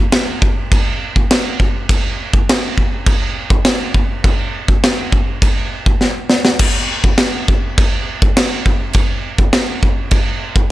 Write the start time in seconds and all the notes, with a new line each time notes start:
0.12 snare, china
0.42 kick
0.72 kick, china
1.16 kick
1.31 snare, china
1.60 kick
1.89 kick, china
2.33 kick
2.49 snare, china
2.78 kick
3.06 kick, china
3.50 kick
3.65 snare, china
3.94 kick
4.24 kick, china
4.68 kick
4.84 snare, china
5.12 kick
5.42 kick, china
5.86 kick
6.01 snare
6.30 snare
6.45 snare
6.59 kick, crash, china
7.04 kick
7.18 snare, china
7.48 kick
7.78 kick, china
8.22 kick
8.37 snare, china
8.66 kick
8.93 kick, china
9.38 kick
9.53 snare, china
9.83 kick
10.11 kick, china
10.56 kick